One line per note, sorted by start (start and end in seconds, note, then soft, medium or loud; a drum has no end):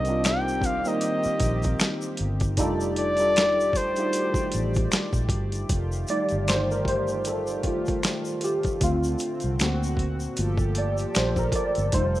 0.00 0.82 C2 loud
0.00 2.55 D#3 medium
0.00 0.08 G3 medium
0.00 2.55 A#3 medium
0.00 0.08 C4 medium
0.00 2.55 C4 medium
0.00 0.09 D4 medium
0.00 0.09 D#4 medium
0.00 2.55 G4 loud
0.00 0.87 A#4 loud
0.00 0.27 D#5 loud
0.05 0.65 G3 medium
0.05 0.65 C4 medium
0.05 closed hi-hat soft
0.05 shaker soft
0.09 0.65 D4 medium
0.09 0.65 D#4 medium
0.09 0.66 F4 medium
0.24 0.67 G5 loud
0.24 finger snap medium
0.24 snare loud
0.24 closed hi-hat medium
0.24 shaker medium
0.48 shaker soft
0.61 kick medium
0.61 closed hi-hat medium
0.61 shaker soft
0.65 0.89 F5 loud
0.85 2.04 G3 medium
0.85 2.05 A#3 medium
0.85 2.05 C4 medium
0.85 2.05 D#4 medium
0.85 2.05 A#4 medium
0.85 2.20 D#5 loud
0.85 shaker soft
1.01 closed hi-hat medium
1.01 shaker medium
1.24 muted fingered electric bass stroke soft
1.24 shaker soft
1.40 1.74 A#1 medium
1.40 kick medium
1.40 closed hi-hat medium
1.40 shaker soft
1.63 kick medium
1.63 closed hi-hat soft
1.63 shaker soft
1.80 finger snap medium
1.80 snare loud
1.80 closed hi-hat medium
1.80 shaker medium
2.02 shaker soft
2.17 2.58 G1 medium
2.17 closed hi-hat medium
2.40 kick medium
2.40 closed hi-hat soft
2.40 shaker soft
2.57 3.93 F1 loud
2.57 5.66 D#3 medium
2.57 3.04 G3 medium
2.57 5.66 A3 medium
2.57 3.04 D4 medium
2.57 3.04 D#4 medium
2.57 3.04 F4 medium
2.57 5.66 G4 loud
2.57 3.05 A4 loud
2.57 5.66 D5 medium
2.57 kick loud
2.57 closed hi-hat medium
2.57 shaker medium
2.81 shaker soft
2.96 3.78 D5 loud
2.96 closed hi-hat medium
3.17 3.76 G3 medium
3.17 3.76 D4 medium
3.17 3.77 D#4 soft
3.17 3.77 F4 medium
3.17 closed hi-hat soft
3.17 shaker soft
3.21 3.77 A4 medium
3.36 finger snap medium
3.36 snare loud
3.36 closed hi-hat medium
3.36 shaker medium
3.60 shaker soft
3.73 4.93 C5 loud
3.73 kick medium
3.73 closed hi-hat medium
3.73 shaker soft
3.96 5.16 G3 medium
3.96 5.16 D4 medium
3.96 5.17 D#4 medium
3.96 5.17 F4 medium
3.96 4.02 F#4 medium
3.96 closed hi-hat soft
3.96 shaker soft
4.05 5.20 G4 medium
4.13 closed hi-hat medium
4.13 shaker medium
4.34 muted fingered electric bass stroke soft
4.34 kick loud
4.34 shaker soft
4.52 4.87 A1 medium
4.52 closed hi-hat medium
4.52 shaker soft
4.74 kick medium
4.74 closed hi-hat soft
4.74 shaker soft
4.92 finger snap medium
4.92 snare loud
4.92 closed hi-hat medium
4.92 shaker medium
5.13 5.30 A#1 medium
5.13 kick medium
5.13 shaker soft
5.29 5.63 G1 loud
5.29 kick loud
5.29 closed hi-hat medium
5.52 closed hi-hat soft
5.52 shaker soft
5.69 6.03 F1 medium
5.69 8.78 D#3 medium
5.69 9.55 A3 medium
5.69 9.55 F4 medium
5.69 8.78 G4 loud
5.69 kick loud
5.69 closed hi-hat medium
5.69 shaker medium
5.92 shaker soft
6.07 8.78 G3 medium
6.07 8.78 A3 medium
6.07 8.78 D#4 medium
6.07 6.49 D5 loud
6.07 closed hi-hat medium
6.07 shaker soft
6.29 7.83 G1 medium
6.29 closed hi-hat soft
6.29 shaker soft
6.48 6.69 C5 loud
6.48 finger snap medium
6.48 snare loud
6.48 closed hi-hat medium
6.48 shaker medium
6.71 6.88 A#4 medium
6.71 shaker soft
6.85 7.28 C5 medium
6.85 kick medium
6.85 closed hi-hat medium
7.08 shaker soft
7.25 7.63 A4 medium
7.25 closed hi-hat medium
7.25 shaker medium
7.47 shaker soft
7.63 8.46 F4 medium
7.63 kick medium
7.63 closed hi-hat medium
7.86 kick medium
7.86 closed hi-hat soft
7.86 shaker soft
8.03 finger snap medium
8.03 snare loud
8.03 closed hi-hat medium
8.03 shaker medium
8.25 shaker soft
8.41 8.83 G4 medium
8.41 closed hi-hat medium
8.41 shaker medium
8.63 kick medium
8.63 closed hi-hat soft
8.63 shaker soft
8.81 9.15 D2 medium
8.81 10.36 D3 medium
8.81 9.36 A3 medium
8.81 10.36 C4 medium
8.81 9.36 C4 medium
8.81 9.36 F4 medium
8.81 kick loud
8.81 closed hi-hat medium
8.81 shaker medium
9.04 shaker medium
9.19 closed hi-hat medium
9.19 shaker soft
9.40 closed hi-hat soft
9.40 shaker soft
9.44 9.58 C2 medium
9.59 10.26 D2 medium
9.59 11.90 A#2 medium
9.59 10.34 A#3 medium
9.59 10.34 C4 medium
9.59 10.36 F#4 medium
9.59 10.34 F#4 medium
9.59 finger snap medium
9.59 snare medium
9.59 closed hi-hat medium
9.59 shaker medium
9.83 shaker soft
9.97 kick medium
9.97 closed hi-hat soft
10.20 shaker soft
10.37 11.04 G1 loud
10.37 11.92 F3 medium
10.37 11.89 A3 soft
10.37 11.90 A#3 soft
10.37 11.90 F4 medium
10.37 11.91 G4 medium
10.37 12.20 A4 medium
10.37 closed hi-hat medium
10.37 shaker soft
10.58 kick loud
10.58 shaker soft
10.75 11.17 D5 medium
10.75 closed hi-hat medium
10.98 closed hi-hat soft
10.98 shaker soft
11.15 11.49 A#1 medium
11.15 11.39 C5 medium
11.15 finger snap medium
11.15 snare loud
11.15 closed hi-hat medium
11.15 shaker medium
11.36 11.55 A#4 loud
11.36 kick medium
11.36 shaker soft
11.52 11.91 D5 loud
11.52 kick medium
11.52 closed hi-hat medium
11.52 shaker soft
11.75 11.91 G1 loud
11.75 closed hi-hat soft
11.75 shaker soft
11.92 12.20 F1 loud
11.92 12.20 D#3 loud
11.92 12.20 G3 medium
11.92 12.20 A3 medium
11.92 12.20 D#4 medium
11.92 12.20 F4 loud
11.92 12.20 C5 loud
11.92 kick loud
11.92 closed hi-hat medium
11.92 shaker medium
12.16 shaker soft